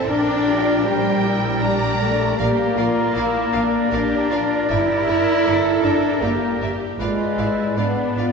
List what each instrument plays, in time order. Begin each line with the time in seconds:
0.08 double bass section A#1, french horn section D4, cello section D4, viola section D4, oboe A#4, violin section A#4 D5 G5, flute section D5
0.47 viola section F4, violin section G4
0.84 french horn section G3, cello section G3, viola section G4, oboe A#4, violin section C5 G5, flute section D5
1.24 viola section E4, violin section A#4
1.61 viola section D4, violin section G4 D5 A#5
2.00 french horn section A3, cello section A3
2.38 double bass section A#1, french horn section A#3, cello section A#3, viola section G4, oboe A#4, violin section A#4 D5 F5, flute section D5
2.77 double bass section A#1, viola section F4, violin section A#4 D5 F5
3.15 double bass section A#1, viola section E4, violin section A#4 D5 F5
3.53 double bass section A#1, viola section D4, violin section A#4 D5 F5
3.92 double bass section A#1, french horn section D4, cello section D4, viola section G4, violin section A#4 D5 F5
4.31 double bass section A#1, viola section F4, violin section A#4 D5 F5
4.69 double bass section G1, french horn section E4, cello section E4, viola section G4, violin section A#4 D5 E5
5.08 double bass section G1, viola section A#4, violin section A#4 D5 E5
5.45 double bass section G1, viola section A4, violin section A#4 D5 E5
5.84 double bass section G1, french horn section D4, cello section D4, violin section A#4 D5 E5
6.20 double bass section G1, french horn section A#3, cello section A#3, viola section G4, violin section A#4 D5 E5
6.61 double bass section G1, violin section A#4 D5 E5
6.99 double bass section G#1, french horn section G#3, cello section G#3, viola section F4, oboe B4, violin section B4 D5 F5, flute section D5
7.38 double bass section G#1, viola section E4, violin section B4 D5 F5
7.77 double bass section G#1, french horn section B3, cello section B3, viola section D4, violin section B4 D5 F5
8.17 double bass section G#1, viola section F4, violin section B4 D5 F5